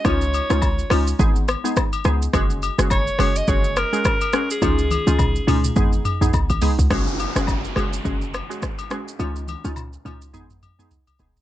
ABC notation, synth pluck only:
X:1
M:4/4
L:1/16
Q:"Swing 16ths" 1/4=105
K:C#mix
V:1 name="Synth pluck"
[G,CDE]3 [G,CDE]3 [G,CDE]2 [G,B,DG]3 [G,B,DG] z2 [G,B,DG] z | [G,CFG]3 [G,CFG]3 [G,CFG]2 [G,CFG]3 [G,CFG] z2 [G,CFG] z | [G,CDE]3 [G,CDE]3 [G,CDE]2 [G,B,DG]3 [G,B,DG] z2 [G,B,DG] z | [G,CFG]3 [G,CFG]3 [G,CFG]2 [G,CFG]3 [G,CFG] z2 [G,CFG] z |
[G,CDE]3 [G,CDE]3 [G,CDE]2 [G,B,DG]3 [G,B,DG] z2 [G,B,DG] z |]